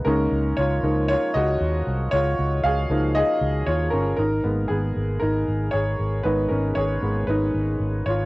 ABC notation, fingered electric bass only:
X:1
M:4/4
L:1/16
Q:1/4=116
K:Abdor
V:1 name="Fingered electric bass" clef=bass
D,,2 D,,2 D,,2 D,,3 z D,,2 E,,2 =C,,2 | D,,2 D,,2 D,,2 D,,3 z D,,2 E,,2 =G,,,2 | A,,,2 A,,,2 A,,,2 A,,,2 A,,,2 A,,,2 A,,,2 A,,,2 | A,,,2 A,,,2 A,,,2 A,,,2 A,,,2 A,,,2 A,,,2 A,,,2 |]